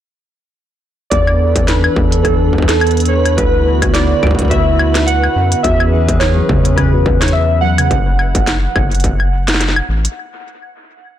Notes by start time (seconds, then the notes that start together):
1.10 E2 E3 B3 D4 A4 B4 D5, kick, closed hi-hat
1.27 claves
1.56 kick, closed hi-hat
1.67 B4, snare, closed hi-hat
1.84 claves
1.96 E2, kick
2.12 closed hi-hat
2.23 A4, kick, closed hi-hat, claves
2.53 kick
2.58 kick
2.62 kick
2.68 A4, snare, closed hi-hat
2.81 closed hi-hat, claves
2.87 closed hi-hat
2.91 closed hi-hat
2.97 closed hi-hat
3.00 closed hi-hat
3.05 C#5, closed hi-hat
3.26 closed hi-hat, claves
3.37 D2 D3 E4 F#4 B4, kick, closed hi-hat
3.82 kick, closed hi-hat, claves
3.93 D5, snare, closed hi-hat
4.23 D2, kick, claves
4.27 kick
4.31 kick
4.35 kick
4.39 kick, closed hi-hat
4.42 kick
4.45 kick
4.48 E5, kick, closed hi-hat
4.51 kick
4.79 claves
4.95 snare, closed hi-hat
5.06 F#5, closed hi-hat
5.24 claves
5.36 F#2
5.52 closed hi-hat
5.63 E2 E3 C#4 F#4 G#4 B4 E5, kick, closed hi-hat
5.80 claves
6.09 kick, closed hi-hat
6.19 C#5, snare, closed hi-hat, claves
6.37 F#3
6.49 E2 C#3, kick
6.65 C#4, closed hi-hat
6.76 C#3 B4, kick, closed hi-hat, claves
6.93 F#4
7.06 kick
7.20 C#5, snare, closed hi-hat, claves
7.28 closed hi-hat
7.33 E5
7.61 F#3 F#5
7.78 C#3, closed hi-hat, claves
7.91 F#1, kick, closed hi-hat
8.19 claves
8.35 kick, closed hi-hat
8.47 snare, closed hi-hat
8.76 F#1, kick, claves
8.91 closed hi-hat
8.95 closed hi-hat
9.00 closed hi-hat
9.04 kick, closed hi-hat
9.20 claves
9.48 snare, closed hi-hat
9.54 snare
9.61 snare, closed hi-hat
9.68 snare
9.76 claves
9.89 A1
10.05 closed hi-hat